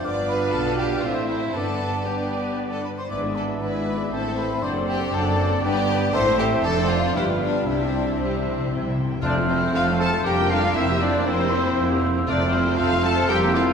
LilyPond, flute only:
\new Staff \with { instrumentName = "Flute" } { \time 3/4 \key c \major \tempo 4 = 118 d'''8 b''8 a''8 g''8 f''8 e''8 | a''4 g''4 r16 a''16 b''16 c'''16 | d'''8 a''8 b''4 a''8 b''8 | c'''8 g''8 a''4 g''4 |
c'''8 g''8 a''8 f''8 e''8 d''8 | d''4 c''4. r8 | \key f \major f'''4 f'''4 d'''4 | e'''4 e'''2 |
f'''4 f'''4 e'''4 | }